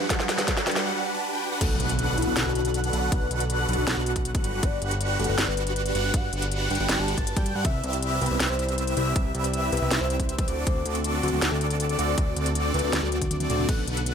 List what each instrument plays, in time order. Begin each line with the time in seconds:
Already playing: analog synth pad G3 B4 F#5, riser
0.09 felt piano G3 D4 F#4 B4, supersaw synth D4 F#4 G4 B4 F#5, soft synth lead F#5, kick, snare, closed hi-hat
0.20 snare
0.29 supersaw synth D4 F#4 G4 B4 F#5, snare, closed hi-hat
0.37 felt piano G3 D4 F#4 B4, snare, closed hi-hat
0.48 kick, snare, closed hi-hat
0.57 snare
0.66 felt piano G3 D4 F#4 B4, supersaw synth D4 F#4 G4 B4 F#5, soft synth lead G5, snare, closed hi-hat
0.71 closed hi-hat
0.76 supersaw synth D4 F#4 G4 B4 F#5, snare
0.86 supersaw synth D4 F#4 G4 B4 F#5
0.95 supersaw synth D4 F#4 G4 B4 F#5
1.14 supersaw synth D4 F#4 G4 B4 A5
1.33 supersaw synth D4 F#4 G4 B4 G5
1.52 supersaw synth D4 F#4 G4 B4 F#5
1.61 analog synth bass B1, analog synth pad D3 B3 A4, supersaw synth D4 F#4 A4 B4 F#5, soft synth lead A4, digital synth lead F#6, kick, closed hi-hat, crash, impact
1.80 analog synth bass B1, supersaw synth D4 F#4 A4 B4 F#5, digital synth lead F#6, closed hi-hat
1.89 closed hi-hat
1.99 closed hi-hat
2.18 analog synth bass B1, supersaw synth D4 F#4 A4 B4 F#5, soft synth lead E4, digital synth lead F#6, closed hi-hat
2.22 closed hi-hat
2.27 analog synth bass B1, supersaw synth D4 F#4 A4 B4 F#5, digital synth lead F#6
2.36 analog synth bass B1, supersaw synth D4 F#4 A4 B4 F#5, digital synth lead F#6, snare, closed hi-hat
2.46 analog synth bass B1, supersaw synth D4 F#4 A4 B4 F#5, soft synth lead F#4, digital synth lead F#6
2.55 closed hi-hat
2.65 closed hi-hat
2.74 closed hi-hat
2.84 closed hi-hat
2.93 analog synth bass B1, supersaw synth D4 F#4 A4 B4 F#5, digital synth lead F#6, closed hi-hat
3.12 analog synth bass B1, supersaw synth D4 F#4 A4 B4 F#5, soft synth lead B4, digital synth lead F#6, kick, closed hi-hat
3.31 analog synth bass B1, supersaw synth D4 F#4 A4 B4 F#5, digital synth lead F#6, closed hi-hat
3.40 closed hi-hat
3.50 closed hi-hat
3.69 analog synth bass B1, supersaw synth D4 F#4 A4 B4 F#5, soft synth lead F#4, digital synth lead F#6, closed hi-hat
3.73 closed hi-hat
3.78 analog synth bass B1, supersaw synth D4 F#4 A4 B4 F#5, digital synth lead F#6
3.87 analog synth bass B1, supersaw synth D4 F#4 A4 B4 F#5, digital synth lead F#6, snare, closed hi-hat
3.97 analog synth bass B1, supersaw synth D4 F#4 A4 B4 F#5, soft synth lead F#4, digital synth lead F#6
4.06 closed hi-hat
4.16 kick, closed hi-hat
4.25 closed hi-hat
4.35 kick, closed hi-hat
4.44 analog synth bass G1, supersaw synth D4 F#4 G4 B4 F#5, analog synth pad D5, digital synth lead F#6, closed hi-hat
4.63 analog synth bass G1, supersaw synth D4 F#4 G4 B4 F#5, soft synth lead D5, digital synth lead F#6, kick, closed hi-hat
4.82 analog synth bass G1, supersaw synth D4 F#4 G4 B4 F#5, digital synth lead F#6, closed hi-hat
4.91 closed hi-hat
5.01 closed hi-hat
5.19 analog synth bass G1, supersaw synth D4 F#4 G4 B4 F#5, soft synth lead A4, digital synth lead F#6, closed hi-hat
5.24 closed hi-hat
5.29 analog synth bass G1, supersaw synth D4 F#4 G4 B4 F#5, digital synth lead F#6
5.38 analog synth bass G1, supersaw synth D4 F#4 G4 B4 F#5, digital synth lead F#6, snare, closed hi-hat
5.48 analog synth bass G1, supersaw synth D4 F#4 G4 B4 F#5, soft synth lead B4, digital synth lead F#6
5.57 closed hi-hat
5.67 closed hi-hat
5.76 closed hi-hat
5.86 closed hi-hat
5.95 analog synth bass G1, supersaw synth D4 F#4 G4 B4 F#5, digital synth lead F#6, closed hi-hat
6.14 analog synth bass G1, supersaw synth D4 F#4 G4 B4 F#5, soft synth lead F#5, digital synth lead F#6, kick, closed hi-hat
6.33 analog synth bass G1, supersaw synth D4 F#4 G4 B4 F#5, digital synth lead F#6, closed hi-hat
6.42 closed hi-hat
6.52 closed hi-hat
6.70 analog synth bass G1, supersaw synth D4 F#4 G4 B4 F#5, soft synth lead G5, digital synth lead F#6, closed hi-hat
6.75 closed hi-hat
6.80 analog synth bass G1, supersaw synth D4 F#4 G4 B4 F#5, digital synth lead F#6
6.89 analog synth bass G1, supersaw synth D4 F#4 G4 B4 F#5, digital synth lead F#6, snare, closed hi-hat
6.99 analog synth bass G1, supersaw synth D4 F#4 G4 B4 F#5, soft synth lead A5, digital synth lead F#6
7.08 closed hi-hat
7.18 analog synth bass G1, supersaw synth D4 F#4 G4 B4 A5, digital synth lead A6, kick, closed hi-hat
7.27 closed hi-hat
7.36 analog synth bass G2, supersaw synth D4 F#4 G4 B4 G5, digital synth lead G6, kick, closed hi-hat
7.46 closed hi-hat
7.55 analog synth bass G2, supersaw synth D4 F#4 G4 B4 F#5, digital synth lead F#6
7.65 analog synth bass C2, analog synth pad C3 E4, supersaw synth C4 E4 G4 B4 E5, soft synth lead E5, digital synth lead E6, kick, closed hi-hat
7.84 analog synth bass C2, supersaw synth C4 E4 G4 B4 E5, digital synth lead E6, closed hi-hat
7.93 closed hi-hat
8.02 closed hi-hat
8.21 analog synth bass C2, supersaw synth C4 E4 G4 B4 E5, soft synth lead B4, digital synth lead E6, closed hi-hat
8.26 closed hi-hat
8.31 analog synth bass C2, supersaw synth C4 E4 G4 B4 E5, digital synth lead E6
8.40 analog synth bass C2, supersaw synth C4 E4 G4 B4 E5, digital synth lead E6, snare, closed hi-hat
8.50 analog synth bass C2, supersaw synth C4 E4 G4 B4 E5, soft synth lead C5, digital synth lead E6
8.59 closed hi-hat
8.69 closed hi-hat
8.78 closed hi-hat
8.87 closed hi-hat
8.97 analog synth bass C2, supersaw synth C4 E4 G4 B4 E5, digital synth lead E6, closed hi-hat
9.16 analog synth bass C2, supersaw synth C4 E4 G4 B4 E5, soft synth lead E5, digital synth lead E6, kick, closed hi-hat
9.35 analog synth bass C2, supersaw synth C4 E4 G4 B4 E5, digital synth lead E6, closed hi-hat
9.44 closed hi-hat
9.54 closed hi-hat
9.72 analog synth bass C2, supersaw synth C4 E4 G4 B4 E5, soft synth lead B4, digital synth lead E6, closed hi-hat
9.77 closed hi-hat
9.82 analog synth bass C2, supersaw synth C4 E4 G4 B4 E5, digital synth lead E6
9.91 analog synth bass C2, supersaw synth C4 E4 G4 B4 E5, digital synth lead E6, snare, closed hi-hat
10.01 analog synth bass C2, supersaw synth C4 E4 G4 B4 E5, soft synth lead C5, digital synth lead E6
10.10 closed hi-hat
10.20 kick, closed hi-hat
10.29 closed hi-hat
10.38 kick, closed hi-hat
10.48 analog synth bass D2, analog synth pad D3 C4 F#4, supersaw synth C4 D4 F#4 A4 D5, digital synth lead D6, closed hi-hat
10.67 analog synth bass D2, supersaw synth C4 D4 F#4 A4 D5, soft synth lead C5, digital synth lead D6, kick, closed hi-hat
10.86 analog synth bass D2, supersaw synth C4 D4 F#4 A4 D5, digital synth lead D6, closed hi-hat
10.95 closed hi-hat
11.04 closed hi-hat
11.23 analog synth bass D2, supersaw synth C4 D4 F#4 A4 D5, soft synth lead F#4, digital synth lead D6, closed hi-hat
11.28 closed hi-hat
11.33 analog synth bass D2, supersaw synth C4 D4 F#4 A4 D5, digital synth lead D6
11.42 analog synth bass D2, supersaw synth C4 D4 F#4 A4 D5, digital synth lead D6, snare, closed hi-hat
11.51 analog synth bass D2, supersaw synth C4 D4 F#4 A4 D5, soft synth lead A4, digital synth lead D6
11.61 closed hi-hat
11.70 closed hi-hat
11.80 closed hi-hat
11.89 closed hi-hat
11.99 analog synth bass D2, supersaw synth C4 D4 F#4 A4 D5, digital synth lead D6, closed hi-hat
12.18 analog synth bass D2, supersaw synth C4 D4 F#4 A4 D5, soft synth lead D5, digital synth lead D6, kick, closed hi-hat
12.37 analog synth bass D2, supersaw synth C4 D4 F#4 A4 D5, digital synth lead D6, closed hi-hat
12.46 closed hi-hat
12.55 closed hi-hat
12.74 analog synth bass D2, supersaw synth C4 D4 F#4 A4 D5, soft synth lead B4, digital synth lead D6, closed hi-hat
12.79 closed hi-hat
12.84 analog synth bass D2, supersaw synth C4 D4 F#4 A4 D5, digital synth lead D6
12.93 analog synth bass D2, supersaw synth C4 D4 F#4 A4 D5, digital synth lead D6, snare, closed hi-hat, high tom
13.03 analog synth bass D2, supersaw synth C4 D4 F#4 A4 D5, soft synth lead F#4, digital synth lead D6, high tom
13.12 closed hi-hat
13.22 kick, closed hi-hat, mid tom
13.31 closed hi-hat, mid tom
13.40 closed hi-hat, mid tom
13.50 analog synth bass D2, supersaw synth C4 D4 F#4 A4 D5, digital synth lead D6, closed hi-hat, mid tom
13.59 mid tom
13.69 analog synth bass B1, analog synth pad A3 A4, supersaw synth D4 F#4 A4 B4 F#5, soft synth lead A4, digital synth lead F#6, kick, closed hi-hat, crash
13.87 analog synth bass B1, supersaw synth D4 F#4 A4 B4 F#5, digital synth lead F#6, closed hi-hat
13.97 closed hi-hat
14.06 closed hi-hat